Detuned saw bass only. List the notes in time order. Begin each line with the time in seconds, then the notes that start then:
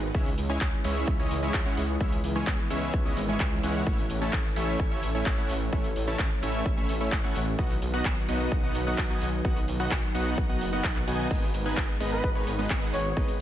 Already playing: G#1
0.15 C#2
0.38 C#2
0.61 C#2
0.84 C#2
1.08 C#2
1.31 C#2
1.54 C#2
1.77 C#2
2.00 C#2
2.24 C#2
2.47 C#2
2.70 C#2
2.94 C#2
3.17 G#1
3.40 C#2
3.63 C#2
3.87 A1
4.10 A1
4.33 A1
4.56 A1
4.80 A1
5.03 A1
5.26 A1
5.49 A1
5.73 A1
5.96 A1
6.19 A1
6.42 A1
6.66 A1
6.89 A1
7.12 A1
7.35 A1
7.59 B1
7.82 B1
8.05 B1
8.28 B1
8.52 B1
8.75 B1
8.98 B1
9.21 B1
9.45 B1
9.68 B1
9.91 B1
10.14 B1
10.38 B1
10.61 F#1
10.84 B1
11.07 B1
11.31 G#1
11.54 G#1
11.77 G#1
12.01 G#1
12.24 G#1
12.47 G#1
12.70 G#1
12.94 G#1
13.17 G#1